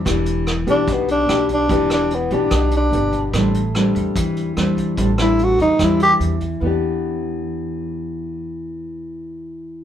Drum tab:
HH |xxxxxxxx|xxxxxxxx|xxxxxxxx|xxxxxxxx|
SD |r-r---r-|-r--r---|r-r---r-|-r--r---|
BD |o--oo--o|o--oo--o|o--oo--o|o--oo--o|

HH |--------|--------|
SD |--------|--------|
BD |--------|--------|